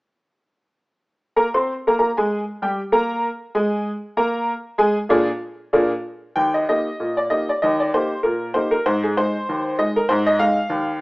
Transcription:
1.36 1.46 A#3 medium
1.36 1.46 A#4 medium
1.36 1.46 A#5 medium
1.54 1.72 C4 medium
1.54 1.72 C5 medium
1.54 1.72 C6 medium
1.87 1.95 A#3 medium
1.87 1.94 A#4 medium
1.87 1.95 A#5 medium
1.99 2.09 A#3 medium
1.99 2.09 A#4 medium
1.99 2.09 A#5 medium
2.17 2.42 G#3 medium
2.17 2.42 G#4 medium
2.17 2.42 G#5 medium
2.62 2.79 G3 medium
2.62 2.79 G4 medium
2.62 2.79 G5 medium
2.92 3.27 A#3 medium
2.92 3.27 A#4 medium
2.92 3.27 A#5 medium
3.55 3.89 G#3 medium
3.55 3.89 G#4 medium
3.55 3.89 G#5 medium
4.17 4.51 A#3 medium
4.17 4.52 A#4 medium
4.17 4.51 A#5 medium
4.78 4.96 G#3 medium
4.78 4.96 G#4 medium
4.78 4.96 G#5 medium
5.09 5.27 A#2 medium
5.09 5.27 A#3 medium
5.09 5.28 D4 medium
5.09 5.28 G#4 medium
5.73 5.91 A#2 medium
5.73 5.91 A#3 medium
5.73 5.90 D4 medium
5.73 5.91 G#4 medium
6.36 6.63 D#2 medium
6.36 6.54 G5 medium
6.54 6.67 D#5 medium
6.69 6.86 A#3 soft
6.69 6.86 D#4 soft
6.69 6.87 G4 soft
6.69 7.15 D#5 medium
7.00 7.26 A#2 medium
7.17 7.30 D5 medium
7.30 7.48 A#3 soft
7.30 7.48 D#4 soft
7.30 7.48 G4 soft
7.30 7.48 D#5 medium
7.49 7.62 D5 medium
7.62 7.89 D#2 medium
7.62 7.79 D#5 medium
7.80 7.93 D5 medium
7.94 8.11 A#3 soft
7.94 8.11 D#4 soft
7.94 8.11 G4 medium
7.94 8.18 C5 medium
8.23 8.51 A#2 medium
8.23 8.53 A#4 medium
8.54 8.72 A#3 soft
8.54 8.73 D#4 soft
8.54 8.73 G4 soft
8.54 8.72 C5 medium
8.71 8.85 A#4 medium
8.86 9.12 G#2 medium
8.86 9.04 C5 medium
9.03 9.17 G#4 medium
9.17 9.34 G#3 soft
9.17 9.35 D#4 medium
9.17 9.76 C5 medium
9.49 9.75 D#2 medium
9.78 9.96 G#3 soft
9.78 9.96 D#4 soft
9.78 9.97 D#5 medium
9.96 10.10 A#4 medium
10.09 10.37 G#2 medium
10.09 10.27 C5 medium
10.27 10.41 D#5 medium
10.39 10.57 G#3 medium
10.39 10.57 D#4 medium
10.39 11.00 F5 loud
10.70 10.98 D#2 medium

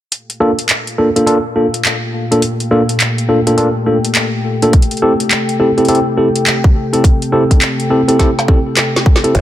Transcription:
0.11 4.69 A#3 medium
0.11 9.30 A4 medium
0.11 4.69 F5 medium
0.11 9.31 G5 medium
0.11 closed hi-hat medium
0.30 closed hi-hat soft
0.40 0.50 A#3 medium
0.40 0.50 D4 medium
0.40 0.50 F4 medium
0.40 0.51 A4 loud
0.59 closed hi-hat soft
0.69 clap loud
0.69 closed hi-hat medium
0.87 closed hi-hat soft
0.98 1.08 A#3 medium
0.98 1.08 D4 medium
0.98 1.08 F4 medium
0.98 1.08 A4 medium
1.16 1.24 A#3 medium
1.16 1.24 D4 medium
1.16 1.24 F4 medium
1.16 1.24 A4 medium
1.16 closed hi-hat medium
1.26 1.37 A#3 medium
1.26 1.37 D4 medium
1.26 1.37 F4 medium
1.26 1.37 A4 medium
1.26 closed hi-hat medium
1.56 1.66 A#3 medium
1.56 1.66 D4 medium
1.56 1.66 F4 medium
1.56 1.66 A4 medium
1.74 closed hi-hat medium
1.85 clap loud
1.85 closed hi-hat medium
2.31 2.41 A#3 medium
2.31 2.41 D4 medium
2.31 2.41 F4 medium
2.31 2.41 A4 medium
2.31 closed hi-hat medium
2.42 closed hi-hat medium
2.60 closed hi-hat soft
2.71 2.81 A#3 medium
2.71 2.81 D4 medium
2.71 2.81 F4 medium
2.71 2.81 A4 loud
2.89 closed hi-hat medium
3.00 clap loud
3.00 closed hi-hat medium
3.18 closed hi-hat soft
3.29 3.39 A#3 medium
3.29 3.39 D4 medium
3.29 3.39 F4 medium
3.29 3.39 A4 medium
3.47 3.55 A#3 medium
3.47 3.55 D4 medium
3.47 3.55 F4 medium
3.47 3.55 A4 medium
3.47 closed hi-hat medium
3.58 3.68 A#3 medium
3.58 3.68 D4 medium
3.58 3.68 F4 medium
3.58 3.68 A4 medium
3.58 closed hi-hat medium
3.86 3.97 A#3 medium
3.86 3.97 D4 medium
3.86 3.97 F4 medium
3.86 3.97 A4 medium
4.05 closed hi-hat medium
4.15 clap loud
4.15 closed hi-hat medium
4.62 4.72 A#3 medium
4.62 4.72 D4 medium
4.62 4.72 F4 medium
4.62 4.72 A4 medium
4.62 closed hi-hat soft
4.73 9.31 C4 medium
4.73 kick loud
4.73 closed hi-hat medium
4.82 closed hi-hat medium
4.91 closed hi-hat soft
4.97 closed hi-hat soft
5.02 5.12 C4 medium
5.02 5.12 E4 medium
5.02 5.12 G4 medium
5.02 5.12 A4 loud
5.20 closed hi-hat soft
5.31 clap loud
5.31 closed hi-hat medium
5.49 closed hi-hat soft
5.60 5.70 C4 medium
5.60 5.70 E4 medium
5.60 5.70 G4 medium
5.60 5.70 A4 medium
5.78 5.86 C4 medium
5.78 5.86 E4 medium
5.78 5.86 G4 medium
5.78 5.86 A4 medium
5.78 closed hi-hat soft
5.85 5.98 C4 medium
5.85 5.99 E4 medium
5.85 closed hi-hat soft
5.88 5.99 G4 medium
5.88 5.99 A4 medium
5.88 closed hi-hat medium
5.95 closed hi-hat soft
6.17 6.27 C4 medium
6.17 6.27 E4 medium
6.17 6.27 G4 medium
6.17 6.27 A4 medium
6.36 closed hi-hat medium
6.47 clap loud
6.47 closed hi-hat medium
6.64 kick loud
6.93 7.03 C4 medium
6.93 7.03 E4 medium
6.93 7.03 G4 medium
6.93 7.03 A4 medium
6.93 closed hi-hat soft
7.04 kick loud
7.04 closed hi-hat medium
7.22 closed hi-hat soft
7.32 7.43 C4 loud
7.32 7.43 E4 medium
7.32 7.43 G4 medium
7.32 7.43 A4 loud
7.51 kick medium
7.51 closed hi-hat soft
7.62 clap loud
7.62 closed hi-hat medium
7.80 closed hi-hat soft
7.90 8.00 C4 medium
7.90 8.00 E4 medium
7.90 8.01 G4 medium
7.90 8.00 A4 medium
8.08 8.17 C4 medium
8.08 8.17 E4 medium
8.08 8.17 G4 medium
8.08 8.17 A4 medium
8.08 closed hi-hat medium
8.19 8.29 C4 medium
8.19 8.29 E4 medium
8.19 8.29 G4 medium
8.19 8.29 A4 medium
8.19 kick medium
8.19 snare medium
8.19 closed hi-hat medium
8.39 snare medium
8.48 8.58 C4 medium
8.48 8.58 E4 medium
8.48 8.58 G4 medium
8.48 8.58 A4 medium
8.48 kick loud
8.77 snare medium
8.77 clap loud
8.77 closed hi-hat medium
8.96 snare medium
9.06 kick loud
9.16 snare loud
9.24 9.34 C4 medium
9.24 9.33 E4 medium
9.24 9.33 G4 medium
9.24 9.34 A4 medium
9.24 closed hi-hat soft
9.35 9.41 G1 loud
9.35 9.41 F4 medium
9.35 9.41 A4 medium
9.35 9.41 A#4 medium
9.35 kick loud
9.35 closed hi-hat medium

